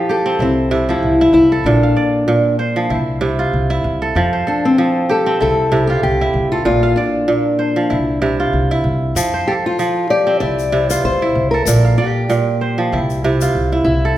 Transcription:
0.00 0.45 F3 medium
0.00 0.12 G4 medium
0.00 0.78 A4 medium
0.00 0.50 C5 medium
0.09 1.51 G4 medium
0.09 0.42 A4 loud
0.26 2.06 C4 medium
0.39 0.94 C2 medium
0.39 0.91 C4 medium
0.39 0.71 E4 medium
0.71 1.70 C3 medium
0.71 1.21 E4 medium
0.89 1.70 F3 medium
0.89 1.32 E4 medium
1.03 1.30 C2 medium
1.21 1.89 E4 medium
1.33 1.60 C2 medium
1.33 1.66 E4 medium
1.52 2.34 A4 medium
1.64 1.92 A#1 medium
1.64 2.27 A#2 medium
1.64 2.55 D4 medium
1.83 2.83 F5 medium
1.97 3.07 D5 medium
2.28 2.96 A#2 medium
2.59 3.78 C5 medium
2.76 2.96 F3 medium
2.90 3.44 C2 medium
2.90 3.21 E4 medium
3.21 4.21 C3 medium
3.21 3.70 E4 medium
3.39 4.90 F4 medium
3.53 3.80 C2 medium
3.70 4.22 E4 medium
3.84 4.11 C2 medium
4.02 4.46 A4 medium
4.15 4.42 F2 medium
4.15 4.77 F3 medium
4.33 5.52 C5 medium
4.47 4.64 D4 medium
4.47 5.79 A4 medium
4.65 5.11 C4 medium
4.78 5.46 F3 medium
5.09 6.51 G4 medium
5.09 5.39 A4 medium
5.26 7.06 C4 medium
5.41 5.95 C2 medium
5.41 5.71 E4 medium
5.41 5.87 A4 loud
5.72 6.71 C3 medium
5.72 6.21 E4 medium
5.87 7.41 F4 medium
5.87 6.02 G4 medium
6.03 6.30 C2 medium
6.03 6.51 G4 loud
6.21 6.89 E4 medium
6.34 6.61 C2 medium
6.52 6.64 F4 medium
6.52 7.34 A4 medium
6.65 6.92 A#1 medium
6.65 7.27 A#2 medium
6.65 6.98 F4 medium
6.83 7.83 F5 medium
6.96 8.80 D4 medium
6.96 8.08 D5 medium
7.28 7.96 A#2 medium
7.59 8.78 C5 medium
7.76 7.96 F3 medium
7.90 8.45 C2 medium
7.90 8.21 E4 medium
8.22 9.21 C3 medium
8.22 8.71 E4 medium
8.40 9.91 F4 medium
8.53 8.80 C2 medium
8.71 9.22 E4 medium
8.84 9.11 C2 loud
9.15 9.43 F2 medium
9.15 9.78 F3 medium
9.15 shaker medium
9.34 10.53 C5 medium
9.47 9.52 G4 medium
9.47 10.80 A4 medium
9.66 10.10 F4 medium
9.79 10.46 F3 medium
9.79 shaker soft
10.10 11.52 G4 medium
10.10 10.39 D5 loud
10.27 12.07 C4 medium
10.40 10.96 C2 medium
10.40 10.72 E4 medium
10.40 10.90 D5 loud
10.59 shaker soft
10.72 11.72 C3 medium
10.72 11.22 E4 medium
10.90 12.42 F4 medium
10.90 11.03 C5 medium
10.90 shaker medium
11.04 11.31 C2 medium
11.04 11.50 C5 loud
11.22 11.91 E4 medium
11.35 11.62 C2 medium
11.51 12.36 A4 medium
11.51 11.64 A#4 medium
11.65 11.94 A#1 medium
11.65 12.28 A#2 medium
11.65 11.97 A#4 loud
11.65 shaker medium
11.85 12.84 F5 medium
11.98 13.25 G4 medium
11.98 13.09 D5 medium
12.30 12.97 A#2 medium
12.30 shaker soft
12.61 13.80 C5 medium
12.78 12.97 F3 medium
12.92 13.47 C2 loud
12.92 13.24 E4 medium
13.10 shaker soft
13.24 14.18 C3 medium
13.24 13.72 E4 medium
13.24 13.92 F4 medium
13.41 14.18 F4 medium
13.41 shaker soft
13.55 13.82 C2 medium
13.72 14.18 E4 medium
13.84 14.13 C2 medium
13.84 14.18 E4 medium
14.05 14.18 A4 medium

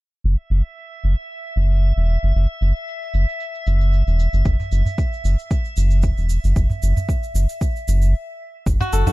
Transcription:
0.24 0.36 F#1 medium
0.24 8.14 E5 medium
0.24 shaker soft
0.39 shaker soft
0.50 0.62 F#1 medium
0.50 shaker medium
0.65 shaker soft
0.77 shaker soft
0.92 shaker soft
1.04 1.15 F#1 medium
1.04 shaker medium
1.19 shaker soft
1.31 shaker soft
1.45 shaker soft
1.56 1.92 F#1 medium
1.56 shaker medium
1.71 shaker soft
1.83 shaker soft
1.96 2.17 E1 medium
1.96 shaker soft
2.09 shaker medium
2.23 2.33 F#1 medium
2.23 shaker soft
2.35 2.47 F#1 medium
2.35 shaker soft
2.50 shaker soft
2.61 2.73 F#1 medium
2.61 shaker medium
2.76 shaker soft
2.88 shaker soft
3.02 shaker soft
3.14 3.25 F#1 medium
3.14 shaker medium
3.28 shaker soft
3.40 shaker soft
3.55 shaker soft
3.67 4.03 F#1 medium
3.67 shaker medium
3.81 shaker soft
3.93 shaker soft
4.07 4.28 E1 medium
4.07 shaker soft
4.19 shaker medium
4.33 4.43 F#1 medium
4.33 shaker soft
4.45 4.57 F#1 medium
4.45 kick loud
4.45 shaker soft
4.60 udu medium
4.60 shaker soft
4.71 4.83 F#1 medium
4.71 shaker medium
4.85 udu medium
4.85 shaker soft
4.98 kick loud
4.98 shaker soft
5.13 shaker soft
5.24 5.36 F#1 medium
5.24 shaker medium
5.39 shaker soft
5.51 kick loud
5.51 shaker soft
5.65 shaker soft
5.77 6.13 F#1 medium
5.77 shaker medium
5.91 shaker soft
6.03 kick loud
6.03 shaker soft
6.17 6.38 E1 medium
6.17 shaker soft
6.29 shaker medium
6.44 6.54 F#1 medium
6.44 shaker soft
6.56 6.68 F#1 medium
6.56 kick medium
6.56 shaker soft
6.70 udu medium
6.70 shaker soft
6.82 6.94 F#1 medium
6.82 shaker medium
6.97 udu medium
6.97 shaker soft
7.09 kick medium
7.09 shaker soft
7.23 shaker soft
7.34 7.46 F#1 medium
7.34 shaker medium
7.49 shaker soft
7.61 kick medium
7.61 shaker soft
7.76 shaker soft
7.88 8.14 F#1 medium
7.88 shaker medium
8.02 shaker soft
8.66 8.78 F#1 medium
8.66 kick loud
8.66 shaker soft
8.80 9.06 F#4 medium
8.80 udu medium
8.80 shaker soft
8.92 9.04 F#1 medium
8.92 9.12 A4 medium
8.92 shaker medium
9.06 9.12 F#4 medium
9.06 udu medium
9.06 low conga medium
9.06 shaker soft

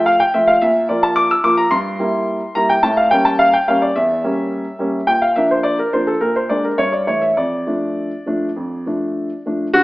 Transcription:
0.00 0.19 F3 soft
0.00 0.19 A3 soft
0.00 0.19 F4 soft
0.06 0.20 F5 medium
0.20 0.34 G5 medium
0.34 0.54 F3 soft
0.34 0.54 A3 soft
0.34 0.54 F4 soft
0.34 0.48 E5 medium
0.47 0.61 F5 medium
0.62 0.88 A#2 medium
0.62 0.86 E5 medium
0.89 1.28 F3 soft
0.89 1.29 A#3 soft
0.89 1.29 F4 soft
0.89 1.03 D5 medium
1.03 1.16 A5 medium
1.16 1.30 D6 medium
1.31 1.44 E6 medium
1.44 1.64 F3 soft
1.44 1.64 A#3 soft
1.44 1.64 F4 soft
1.44 1.58 D6 medium
1.57 1.71 A#5 medium
1.71 1.98 G2 medium
1.71 2.55 C6 medium
1.99 2.39 G3 soft
1.99 2.40 A#3 soft
1.99 2.40 E4 soft
2.55 2.75 G3 soft
2.55 2.75 A#3 soft
2.55 2.76 E4 soft
2.55 2.69 A#5 medium
2.69 2.83 G5 medium
2.83 3.10 A2 medium
2.83 2.97 A5 medium
2.97 3.11 F5 medium
3.11 3.51 G3 soft
3.11 3.52 A#3 soft
3.11 3.52 C#4 soft
3.11 3.25 G5 medium
3.25 3.39 A5 medium
3.39 3.53 F5 medium
3.53 3.67 G5 medium
3.68 3.88 G3 soft
3.68 3.88 A#3 soft
3.68 3.89 C#4 soft
3.68 3.82 F5 medium
3.82 3.96 D5 medium
3.96 4.23 E2 soft
3.96 5.07 E5 medium
4.24 4.64 G3 soft
4.24 4.64 A#3 soft
4.24 4.64 C#4 soft
4.79 4.99 G3 soft
4.79 4.99 A#3 soft
4.79 5.00 C#4 soft
5.07 5.35 A#2 soft
5.07 5.21 G5 medium
5.22 5.35 F5 medium
5.36 5.77 F3 soft
5.36 5.77 A#3 soft
5.36 5.77 D4 soft
5.36 5.50 E5 medium
5.51 5.64 C5 medium
5.63 5.78 D5 medium
5.79 5.93 A#4 medium
5.93 6.14 F3 soft
5.93 6.14 A#3 soft
5.93 6.14 D4 soft
5.93 6.07 C5 medium
6.07 6.21 A4 medium
6.21 6.49 A#2 soft
6.21 6.35 A#4 medium
6.36 6.50 C5 medium
6.49 6.70 G#3 soft
6.49 6.71 A#3 soft
6.49 6.71 D4 soft
6.49 6.64 D5 medium
6.64 6.78 A#4 medium
6.78 7.07 G2 soft
6.78 6.93 C#5 medium
6.92 7.07 D5 soft
7.07 7.28 E3 soft
7.07 7.29 A3 soft
7.07 7.29 E4 soft
7.07 7.22 C#5 medium
7.22 7.37 E5 medium
7.37 7.66 F2 soft
7.37 9.41 D5 medium
7.67 8.10 F3 soft
7.67 8.10 A3 soft
7.67 8.10 D4 soft
8.26 8.48 F3 soft
8.26 8.48 A3 soft
8.26 8.48 D4 soft
8.56 8.85 F2 soft
8.86 9.29 F3 soft
8.86 9.29 A3 soft
8.86 9.29 D4 soft
9.46 9.66 F3 soft
9.46 9.67 A3 soft
9.46 9.67 D4 soft
9.74 9.83 D3 medium
9.74 9.83 F#4 medium

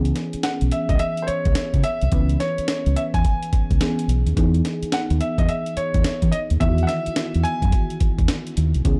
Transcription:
0.00 0.11 C#2 medium
0.00 2.08 E3 medium
0.00 2.08 B3 medium
0.00 2.09 C#4 medium
0.00 2.09 G#4 medium
0.05 closed hi-hat soft
0.16 snare medium
0.16 closed hi-hat medium
0.33 muted fingered electric bass stroke soft
0.33 closed hi-hat medium
0.43 0.50 F#5 medium
0.43 snare loud
0.43 closed hi-hat medium
0.61 0.70 B1 medium
0.61 closed hi-hat soft
0.71 0.90 E5 medium
0.71 closed hi-hat medium
0.89 0.98 C#2 medium
0.89 1.00 D#5 medium
0.89 kick medium
0.89 closed hi-hat soft
0.99 1.23 E5 medium
0.99 closed hi-hat medium
1.17 closed hi-hat soft
1.22 1.28 C5 medium
1.27 1.85 C#5 medium
1.27 muted fingered electric bass stroke soft
1.27 closed hi-hat medium
1.45 1.54 C#2 medium
1.45 kick loud
1.45 closed hi-hat soft
1.55 snare loud
1.55 closed hi-hat medium
1.74 1.82 C#3 medium
1.74 kick medium
1.74 closed hi-hat medium
1.83 2.36 E5 loud
1.83 closed hi-hat medium
2.01 2.11 C2 medium
2.01 closed hi-hat soft
2.12 2.36 C#2 loud
2.12 3.77 E3 medium
2.12 3.77 B3 medium
2.12 3.78 C#4 medium
2.12 3.78 B4 medium
2.12 kick loud
2.12 closed hi-hat medium
2.29 closed hi-hat soft
2.40 2.98 C#5 medium
2.40 snare medium
2.40 closed hi-hat medium
2.58 muted fingered electric bass stroke soft
2.58 closed hi-hat medium
2.68 snare loud
2.68 closed hi-hat medium
2.86 2.95 C#2 medium
2.86 closed hi-hat soft
2.96 3.01 E5 medium
2.96 closed hi-hat medium
3.14 3.23 E2 medium
3.14 4.04 G#5 medium
3.14 kick medium
3.14 closed hi-hat soft
3.25 kick medium
3.25 closed hi-hat medium
3.43 closed hi-hat soft
3.53 muted fingered electric bass stroke soft
3.53 kick medium
3.53 closed hi-hat medium
3.71 3.79 C#2 medium
3.71 kick medium
3.71 closed hi-hat soft
3.81 4.35 E3 medium
3.81 4.36 B3 medium
3.81 4.37 C#4 soft
3.81 4.37 G#4 medium
3.81 snare loud
3.81 closed hi-hat medium
3.99 closed hi-hat medium
4.08 4.23 B1 medium
4.08 closed hi-hat medium
4.26 4.35 D#2 medium
4.26 closed hi-hat soft
4.36 4.60 E2 loud
4.36 6.57 E3 medium
4.36 6.57 B3 medium
4.36 6.57 D#4 medium
4.36 6.58 G#4 medium
4.36 kick loud
4.36 closed hi-hat medium
4.54 closed hi-hat soft
4.65 snare medium
4.65 closed hi-hat medium
4.83 muted fingered electric bass stroke soft
4.83 closed hi-hat medium
4.92 5.00 F#5 medium
4.92 snare loud
4.92 closed hi-hat medium
5.10 5.19 D#2 medium
5.10 closed hi-hat soft
5.21 5.37 E5 medium
5.21 closed hi-hat medium
5.38 5.47 E2 medium
5.38 5.49 D#5 medium
5.38 kick medium
5.38 closed hi-hat soft
5.49 5.78 E5 medium
5.49 closed hi-hat medium
5.66 closed hi-hat soft
5.77 6.35 C#5 medium
5.77 muted fingered electric bass stroke soft
5.77 closed hi-hat medium
5.94 6.03 E2 medium
5.94 kick loud
5.94 closed hi-hat soft
6.04 snare loud
6.04 closed hi-hat medium
6.22 6.31 E3 medium
6.22 kick medium
6.22 closed hi-hat medium
6.32 6.38 D#5 medium
6.32 closed hi-hat medium
6.50 6.59 D#2 medium
6.50 closed hi-hat soft
6.60 6.84 E2 loud
6.60 8.82 D#3 medium
6.60 8.81 E3 medium
6.60 8.81 B3 medium
6.60 6.70 E4 medium
6.60 6.84 E5 medium
6.60 kick loud
6.60 closed hi-hat medium
6.69 8.85 F#4 medium
6.78 closed hi-hat soft
6.83 6.88 F#5 medium
6.87 7.46 E5 loud
6.87 snare medium
6.87 closed hi-hat medium
7.06 muted fingered electric bass stroke soft
7.06 closed hi-hat medium
7.16 snare loud
7.16 closed hi-hat medium
7.34 7.44 E2 medium
7.34 closed hi-hat soft
7.43 7.96 G#5 loud
7.43 closed hi-hat medium
7.62 7.71 F#2 medium
7.62 kick medium
7.62 closed hi-hat soft
7.72 kick medium
7.72 closed hi-hat medium
7.90 closed hi-hat soft
8.00 muted fingered electric bass stroke soft
8.00 kick medium
8.00 closed hi-hat medium
8.19 8.27 E2 medium
8.19 kick loud
8.19 closed hi-hat soft
8.28 snare loud
8.28 closed hi-hat medium
8.47 closed hi-hat medium
8.57 8.72 D#2 medium
8.57 closed hi-hat medium
8.74 8.84 C2 medium
8.74 closed hi-hat soft
8.84 8.99 C#2 loud
8.84 8.99 E3 medium
8.84 8.99 B3 medium
8.84 8.99 C#4 medium
8.84 8.99 G#4 medium
8.84 kick loud
8.84 closed hi-hat medium

